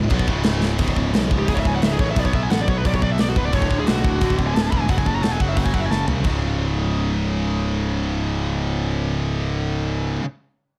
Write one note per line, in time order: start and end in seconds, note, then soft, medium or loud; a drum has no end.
0.10 0.27 B1 loud
0.10 0.28 B2 loud
0.10 0.28 F#3 loud
0.10 0.28 B3 loud
0.10 kick loud
0.10 crash medium
0.19 kick medium
0.27 0.76 C#1 medium
0.27 0.79 C#2 medium
0.27 0.79 G#2 medium
0.27 0.79 C#3 medium
0.27 kick medium
0.27 crash medium
0.44 snare loud
0.44 crash medium
0.63 snare medium
0.78 0.94 C#1 medium
0.78 1.47 C#2 medium
0.78 1.47 G#2 loud
0.78 1.47 C#3 medium
0.78 kick loud
0.78 open hi-hat medium
0.88 kick medium
0.96 1.11 C#1 medium
0.96 kick medium
1.13 1.28 B1 medium
1.13 snare loud
1.13 open hi-hat medium
1.31 1.45 C#1 medium
1.31 kick medium
1.39 1.47 G4 medium
1.48 1.63 C#1 medium
1.48 2.15 C#2 medium
1.48 2.15 G#2 medium
1.48 2.15 C#3 medium
1.48 1.53 G#4 medium
1.48 kick loud
1.48 open hi-hat medium
1.54 1.59 C#5 medium
1.54 kick medium
1.60 1.65 E5 medium
1.65 1.80 C#1 medium
1.65 1.74 G#5 loud
1.65 kick medium
1.75 1.82 F#5 medium
1.82 1.97 C#1 medium
1.82 1.90 E5 medium
1.82 snare loud
1.82 open hi-hat medium
1.91 1.99 G#4 medium
1.99 2.14 A1 medium
1.99 2.16 C#2 medium
1.99 2.16 G#2 medium
1.99 2.15 C#3 medium
1.99 2.08 C#5 medium
1.99 kick medium
2.11 2.19 E5 medium
2.16 2.31 B1 loud
2.16 2.83 B2 medium
2.16 2.86 F#3 medium
2.16 2.84 B3 loud
2.16 2.25 D5 medium
2.16 kick loud
2.16 open hi-hat soft
2.25 2.33 C#5 medium
2.25 kick medium
2.33 2.48 B1 medium
2.33 2.42 E5 medium
2.33 kick medium
2.43 2.50 G#5 medium
2.50 2.65 A1 medium
2.50 2.59 F#5 medium
2.50 snare loud
2.50 open hi-hat soft
2.61 2.68 D5 medium
2.68 2.82 B1 medium
2.68 2.78 C#5 medium
2.68 kick medium
2.78 2.85 B4 medium
2.85 2.99 B1 medium
2.85 3.52 B2 medium
2.85 3.53 F#3 medium
2.85 3.53 B3 medium
2.85 2.93 D5 medium
2.85 kick loud
2.85 open hi-hat medium
2.94 3.02 C#5 medium
2.94 kick medium
3.02 3.17 B1 medium
3.02 3.10 D5 medium
3.02 kick medium
3.12 3.20 E5 medium
3.18 3.34 B1 medium
3.18 3.27 D5 medium
3.18 snare loud
3.18 open hi-hat medium
3.29 3.36 F#4 medium
3.36 3.51 C#1 medium
3.36 3.53 B2 medium
3.36 3.54 F#3 medium
3.36 3.51 B3 medium
3.36 3.44 B4 medium
3.36 kick medium
3.45 3.53 D5 medium
3.53 3.68 D1 medium
3.53 4.20 D2 medium
3.53 4.20 A2 medium
3.53 4.21 D3 loud
3.53 3.77 C#5 medium
3.53 kick loud
3.53 open hi-hat soft
3.62 kick medium
3.71 3.85 D1 medium
3.71 kick medium
3.79 3.87 G#4 medium
3.87 4.02 B1 medium
3.87 4.35 F#4 medium
3.87 snare loud
3.87 open hi-hat medium
4.04 4.19 D1 medium
4.04 kick medium
4.21 4.36 D1 medium
4.21 4.88 D2 medium
4.21 4.88 A2 medium
4.21 4.89 D3 medium
4.21 kick loud
4.21 open hi-hat medium
4.30 kick medium
4.39 4.53 D1 medium
4.39 kick medium
4.47 4.54 G#5 medium
4.55 4.70 D1 medium
4.55 4.61 A5 loud
4.55 snare loud
4.55 open hi-hat medium
4.61 4.67 G#5 medium
4.67 4.87 D3 medium
4.67 4.71 A5 medium
4.67 4.80 B5 loud
4.72 4.87 E1 medium
4.72 4.86 D2 medium
4.72 4.88 A2 medium
4.72 kick medium
4.80 4.88 G#5 medium
4.89 5.04 F#1 medium
4.89 5.56 F#2 medium
4.89 5.56 C#3 medium
4.89 5.57 F#3 medium
4.89 4.97 F#5 medium
4.89 kick medium
4.89 open hi-hat soft
4.98 5.06 G#5 medium
4.98 kick medium
5.06 5.21 F#1 medium
5.06 5.15 A5 loud
5.06 kick medium
5.15 5.23 A#5 loud
5.23 5.38 E1 medium
5.23 5.31 A5 medium
5.23 snare loud
5.23 open hi-hat soft
5.32 5.41 G#5 medium
5.40 5.55 F#1 medium
5.40 5.48 F#5 medium
5.40 kick medium
5.48 5.57 E5 medium
5.57 5.72 F#1 medium
5.57 6.23 F#2 medium
5.57 6.25 C#3 medium
5.57 6.25 F#3 medium
5.57 5.65 F#5 medium
5.57 kick loud
5.57 open hi-hat soft
5.65 5.74 G#5 medium
5.65 kick medium
5.74 5.89 F#1 medium
5.74 5.80 F#5 medium
5.74 kick medium
5.80 5.85 E5 medium
5.86 5.91 G#5 medium
5.91 6.06 F#1 medium
5.91 6.02 A5 medium
5.91 snare medium
6.08 6.23 C2 medium
6.08 6.24 F#2 medium
6.08 6.25 C#3 medium
6.08 6.24 F#3 medium
6.08 floor tom medium
6.24 10.18 C#1 medium
6.24 10.20 C#2 medium
6.24 10.22 G#2 medium
6.24 kick medium
6.24 crash medium
6.28 10.24 C#3 loud